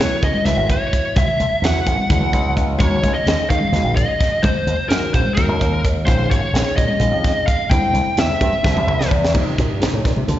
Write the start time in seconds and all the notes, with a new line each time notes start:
Already playing: F#3 B3 E4 C#5
0.00 A#4, snare, low conga
0.23 C#3 D#5, kick, closed hi-hat
0.34 high conga
0.43 C#2 F#3 B3 E4 B4 E5, closed hi-hat, low conga
0.48 snare
0.57 G#1
0.70 C#5, kick, closed hi-hat
0.93 kick, closed hi-hat
1.04 low conga
1.16 B1 E5, kick, closed hi-hat, high conga
1.27 muted slap bass stroke, low conga
1.40 C#2, closed hi-hat
1.51 muted slap bass stroke, low conga
1.62 E2 F#3 B3 E4 F#4 F#5, snare, closed hi-hat
1.86 G#1, kick, closed hi-hat
1.97 muted slap bass stroke, high conga
2.09 C#2 F#3 B3 E4 G#4, kick, closed hi-hat, low conga
2.20 C#2
2.33 C#2 D#5, kick, closed hi-hat
2.45 low conga
2.56 C#2 F#5, kick, closed hi-hat
2.68 low conga
2.79 D#2 D#3 G#3 C#4 F#4 C#5, kick, closed hi-hat, high conga
2.91 low conga
3.03 C#2, kick, closed hi-hat
3.14 D#5
3.26 D#2 D#3 G#3 C#4 G#4, snare, closed hi-hat, low conga
3.50 D#3 F5, kick, closed hi-hat
3.61 high conga
3.72 D#2 D#3 G#3 C#4 F#4, snare, closed hi-hat, low conga
3.84 A#1
3.96 D#5, kick, closed hi-hat
4.21 kick, snare, closed hi-hat
4.32 low conga
4.42 C#2 C5, kick, closed hi-hat, high conga
4.55 low conga
4.67 D#2, closed hi-hat
4.78 muted slap bass stroke
4.89 F#2 D#3 G#3 C#4 F#4 A#4, snare, closed hi-hat, low conga
5.14 A#1 C5, kick, closed hi-hat
5.25 muted slap bass stroke, high conga
5.34 D#2 D#3 G#3 C#4 F#4 A#4, kick, closed hi-hat, low conga
5.48 D#2
5.61 D#2, kick, closed hi-hat
5.85 D#2, kick, closed hi-hat
5.95 low conga
6.05 A#1 D#3 G#3 C#4 F4 C5, kick, closed hi-hat, high conga
6.19 low conga
6.31 G#1 C#5, kick, closed hi-hat
6.53 A#1 D#3 G#3 C#4 G#4, snare, closed hi-hat, low conga
6.76 A#2 D#5, kick, closed hi-hat
6.88 high conga
6.99 A#1 D#3 G#3 C#4 G#4, closed hi-hat, low conga
7.11 F2
7.24 kick, snare, closed hi-hat
7.46 F5, kick, closed hi-hat
7.59 low conga
7.70 C2 D3 G3 C4 E4 G5, kick, closed hi-hat, high conga, low conga
7.83 low conga
7.93 C2, closed hi-hat
8.06 low conga
8.17 E2 D3 G3 C4 D4 E5, snare, closed hi-hat
8.41 G2, kick, closed hi-hat
8.52 muted slap bass stroke, high conga
8.63 C2 D3 G3 C4 G4, kick, snare, low conga
8.76 C2, high tom
8.87 C2, mid tom
9.01 snare
9.11 E2, kick
9.25 snare
9.34 C3 F3 A#3 D#4, kick, crash, high conga
9.46 low conga
9.58 A#2, kick, closed hi-hat
9.70 G2
9.80 G#2 C3 F3 A#3 D#4, snare, closed hi-hat
9.93 A2
10.05 A#2, kick, snare, closed hi-hat
10.16 C3, high conga
10.27 C3 D3 F3 A#3 D4, closed hi-hat, low conga